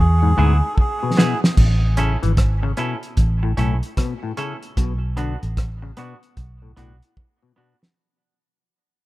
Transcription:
0.00 0.33 E2 loud
0.00 0.76 G#4 loud
0.23 0.32 G#2 medium
0.37 0.60 D2 medium
0.37 0.53 G#2 medium
0.37 0.56 B3 medium
0.37 0.56 E4 medium
0.37 0.57 G#4 medium
0.74 0.78 A4 medium
0.74 kick loud
0.80 1.40 G#4 medium
1.03 1.12 B2 medium
1.17 1.33 B2 medium
1.17 1.36 B3 medium
1.17 1.36 E4 medium
1.17 1.37 G#4 medium
1.17 snare loud
1.44 snare medium
1.57 2.15 A1 loud
1.57 kick loud
1.57 crash medium
1.97 2.13 C#3 medium
1.97 2.16 C#4 medium
1.97 2.16 E4 medium
1.97 2.17 A4 medium
1.97 closed hi-hat medium
2.23 2.71 G#1 medium
2.23 2.32 E3 medium
2.23 closed hi-hat medium
2.37 kick loud
2.37 cross-stick loud
2.37 closed hi-hat medium
2.63 2.72 C#3 medium
2.63 muted clean electric guitar stroke soft
2.77 2.93 B2 medium
2.77 2.96 C#4 medium
2.77 2.96 E4 medium
2.77 2.97 A4 medium
2.77 closed hi-hat medium
3.03 closed hi-hat soft
3.17 3.53 A1 loud
3.17 kick loud
3.17 closed hi-hat medium
3.43 3.52 A2 medium
3.43 muted clean electric guitar stroke soft
3.57 3.80 B1 medium
3.57 3.73 A2 medium
3.57 3.76 C#4 medium
3.57 3.76 E4 medium
3.57 3.76 A4 medium
3.57 closed hi-hat medium
3.83 closed hi-hat medium
3.97 4.13 B2 medium
3.97 kick loud
3.97 cross-stick loud
3.97 closed hi-hat medium
4.23 4.32 A2 medium
4.37 4.53 C#3 medium
4.37 4.56 C#4 medium
4.37 4.56 E4 medium
4.37 4.56 A4 medium
4.37 closed hi-hat medium
4.63 closed hi-hat medium
4.77 5.35 B1 loud
4.77 4.93 B2 medium
4.77 kick loud
4.77 closed hi-hat loud
5.17 5.33 D3 medium
5.17 5.35 B3 medium
5.17 5.36 D4 medium
5.17 5.36 F#4 medium
5.17 closed hi-hat medium
5.43 5.91 A1 medium
5.43 closed hi-hat medium
5.57 kick loud
5.57 cross-stick loud
5.57 closed hi-hat medium
5.82 5.92 C#3 medium
5.82 muted clean electric guitar stroke soft
5.97 6.13 B2 medium
5.97 6.15 B3 medium
5.97 6.16 D4 medium
5.97 6.16 F#4 loud
5.97 closed hi-hat medium
6.23 closed hi-hat soft
6.37 6.72 B1 loud
6.37 kick loud
6.37 closed hi-hat medium
6.62 6.72 A2 medium
6.77 6.99 B1 medium
6.77 6.93 A2 medium
6.77 6.95 B3 medium
6.77 6.96 D4 medium
6.77 6.96 F#4 medium
6.77 closed hi-hat medium
7.02 closed hi-hat soft
7.17 kick loud
7.42 7.52 B2 medium
7.56 7.73 B2 medium
7.56 7.75 B3 medium
7.56 7.76 D4 medium
7.56 7.76 F#4 medium
7.82 muted clean electric guitar stroke medium
7.82 snare medium

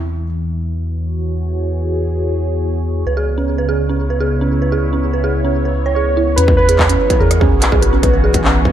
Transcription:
0.00 3.05 E2 medium
0.00 3.07 E3 medium
0.00 8.72 B3 medium
0.00 0.90 E4 medium
0.46 4.31 F#4 medium
0.91 8.72 C#5 medium
1.03 4.39 G#4 medium
3.07 6.36 C#2 medium
3.07 6.38 C#3 medium
3.07 3.13 B4 medium
3.17 3.27 G#4 loud
3.38 3.44 C#4 medium
3.50 7.35 E4 medium
3.58 3.65 B4 medium
3.69 3.78 G#4 loud
3.89 3.96 C#4 medium
4.10 4.17 B4 medium
4.20 4.30 G#4 loud
4.41 4.48 C#4 medium
4.62 4.68 B4 medium
4.72 4.82 G#4 loud
4.93 4.99 C#4 medium
5.13 5.20 B4 medium
5.24 5.34 G#4 loud
5.45 5.51 C#4 medium
5.65 5.72 B4 medium
5.86 5.90 C#5 medium
5.95 6.03 G#4 medium
5.95 6.38 C#5 loud
6.17 6.27 E4 loud
6.36 6.96 E2 loud
6.36 8.72 E3 medium
6.36 6.44 C#4 medium
6.36 6.56 B4 loud
6.36 closed hi-hat medium
6.48 kick loud
6.57 7.22 B4 loud
6.57 6.65 B4 medium
6.69 6.78 G#4 loud
6.69 closed hi-hat medium
6.79 kick loud
6.79 clap loud
6.89 6.96 C#4 medium
6.89 closed hi-hat medium
7.10 7.17 B4 medium
7.10 kick loud
7.10 closed hi-hat medium
7.19 7.53 E2 medium
7.19 8.72 F#4 medium
7.19 7.30 G#4 loud
7.19 7.39 A#4 medium
7.31 cross-stick medium
7.31 closed hi-hat medium
7.40 7.48 C#4 medium
7.40 7.79 G#4 medium
7.40 kick loud
7.51 8.72 B1 medium
7.51 8.72 G#4 medium
7.62 7.68 B4 medium
7.62 clap loud
7.62 closed hi-hat loud
7.72 7.82 G#4 loud
7.72 kick loud
7.81 8.60 B4 medium
7.81 cross-stick soft
7.81 closed hi-hat medium
7.93 7.99 C#4 medium
8.03 kick loud
8.03 closed hi-hat medium
8.14 8.20 B4 medium
8.24 8.34 G#4 loud
8.34 kick loud
8.34 closed hi-hat medium
8.45 8.51 C#4 medium
8.45 clap loud
8.65 8.72 B4 medium
8.65 kick loud

